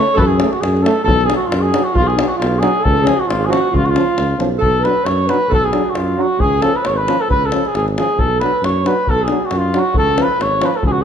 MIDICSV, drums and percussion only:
0, 0, Header, 1, 2, 480
1, 0, Start_track
1, 0, Tempo, 445104
1, 176, Time_signature, 2, 2, 24, 8
1, 11906, End_track
2, 0, Start_track
2, 0, Title_t, "Davul"
2, 193, Note_on_c, 9, 43, 84
2, 301, Note_off_c, 9, 43, 0
2, 428, Note_on_c, 9, 37, 78
2, 536, Note_off_c, 9, 37, 0
2, 570, Note_on_c, 9, 37, 26
2, 678, Note_off_c, 9, 37, 0
2, 684, Note_on_c, 9, 37, 74
2, 792, Note_off_c, 9, 37, 0
2, 829, Note_on_c, 9, 37, 30
2, 930, Note_off_c, 9, 37, 0
2, 930, Note_on_c, 9, 37, 72
2, 1038, Note_off_c, 9, 37, 0
2, 1162, Note_on_c, 9, 43, 93
2, 1270, Note_off_c, 9, 43, 0
2, 1306, Note_on_c, 9, 37, 26
2, 1398, Note_off_c, 9, 37, 0
2, 1398, Note_on_c, 9, 37, 72
2, 1506, Note_off_c, 9, 37, 0
2, 1641, Note_on_c, 9, 37, 83
2, 1749, Note_off_c, 9, 37, 0
2, 1876, Note_on_c, 9, 37, 77
2, 1983, Note_off_c, 9, 37, 0
2, 2108, Note_on_c, 9, 43, 78
2, 2215, Note_off_c, 9, 43, 0
2, 2263, Note_on_c, 9, 37, 28
2, 2358, Note_off_c, 9, 37, 0
2, 2358, Note_on_c, 9, 37, 83
2, 2466, Note_off_c, 9, 37, 0
2, 2611, Note_on_c, 9, 37, 79
2, 2719, Note_off_c, 9, 37, 0
2, 2832, Note_on_c, 9, 37, 72
2, 2940, Note_off_c, 9, 37, 0
2, 3077, Note_on_c, 9, 43, 77
2, 3184, Note_off_c, 9, 43, 0
2, 3206, Note_on_c, 9, 37, 26
2, 3310, Note_off_c, 9, 37, 0
2, 3310, Note_on_c, 9, 37, 79
2, 3418, Note_off_c, 9, 37, 0
2, 3564, Note_on_c, 9, 37, 75
2, 3672, Note_off_c, 9, 37, 0
2, 3805, Note_on_c, 9, 37, 70
2, 3913, Note_off_c, 9, 37, 0
2, 4035, Note_on_c, 9, 43, 70
2, 4143, Note_off_c, 9, 43, 0
2, 4160, Note_on_c, 9, 37, 25
2, 4268, Note_off_c, 9, 37, 0
2, 4269, Note_on_c, 9, 37, 65
2, 4377, Note_off_c, 9, 37, 0
2, 4507, Note_on_c, 9, 37, 65
2, 4614, Note_off_c, 9, 37, 0
2, 4745, Note_on_c, 9, 37, 56
2, 4853, Note_off_c, 9, 37, 0
2, 4984, Note_on_c, 9, 43, 68
2, 5091, Note_off_c, 9, 43, 0
2, 5230, Note_on_c, 9, 37, 61
2, 5338, Note_off_c, 9, 37, 0
2, 5461, Note_on_c, 9, 37, 70
2, 5569, Note_off_c, 9, 37, 0
2, 5705, Note_on_c, 9, 37, 60
2, 5813, Note_off_c, 9, 37, 0
2, 5952, Note_on_c, 9, 43, 82
2, 6060, Note_off_c, 9, 43, 0
2, 6179, Note_on_c, 9, 37, 61
2, 6287, Note_off_c, 9, 37, 0
2, 6420, Note_on_c, 9, 37, 72
2, 6527, Note_off_c, 9, 37, 0
2, 6901, Note_on_c, 9, 43, 78
2, 7009, Note_off_c, 9, 43, 0
2, 7142, Note_on_c, 9, 37, 65
2, 7250, Note_off_c, 9, 37, 0
2, 7384, Note_on_c, 9, 37, 70
2, 7492, Note_off_c, 9, 37, 0
2, 7638, Note_on_c, 9, 37, 69
2, 7745, Note_off_c, 9, 37, 0
2, 7876, Note_on_c, 9, 43, 75
2, 7984, Note_off_c, 9, 43, 0
2, 8109, Note_on_c, 9, 37, 72
2, 8217, Note_off_c, 9, 37, 0
2, 8251, Note_on_c, 9, 37, 28
2, 8358, Note_off_c, 9, 37, 0
2, 8358, Note_on_c, 9, 37, 64
2, 8466, Note_off_c, 9, 37, 0
2, 8497, Note_on_c, 9, 37, 26
2, 8605, Note_off_c, 9, 37, 0
2, 8605, Note_on_c, 9, 37, 69
2, 8713, Note_off_c, 9, 37, 0
2, 8828, Note_on_c, 9, 43, 75
2, 8936, Note_off_c, 9, 43, 0
2, 9074, Note_on_c, 9, 37, 59
2, 9182, Note_off_c, 9, 37, 0
2, 9321, Note_on_c, 9, 37, 67
2, 9429, Note_off_c, 9, 37, 0
2, 9555, Note_on_c, 9, 37, 61
2, 9663, Note_off_c, 9, 37, 0
2, 9784, Note_on_c, 9, 43, 68
2, 9892, Note_off_c, 9, 43, 0
2, 10005, Note_on_c, 9, 37, 62
2, 10113, Note_off_c, 9, 37, 0
2, 10253, Note_on_c, 9, 37, 70
2, 10361, Note_off_c, 9, 37, 0
2, 10504, Note_on_c, 9, 37, 63
2, 10612, Note_off_c, 9, 37, 0
2, 10724, Note_on_c, 9, 43, 81
2, 10831, Note_off_c, 9, 43, 0
2, 10976, Note_on_c, 9, 37, 70
2, 11084, Note_off_c, 9, 37, 0
2, 11225, Note_on_c, 9, 37, 64
2, 11332, Note_off_c, 9, 37, 0
2, 11447, Note_on_c, 9, 37, 73
2, 11555, Note_off_c, 9, 37, 0
2, 11678, Note_on_c, 9, 43, 78
2, 11786, Note_off_c, 9, 43, 0
2, 11906, End_track
0, 0, End_of_file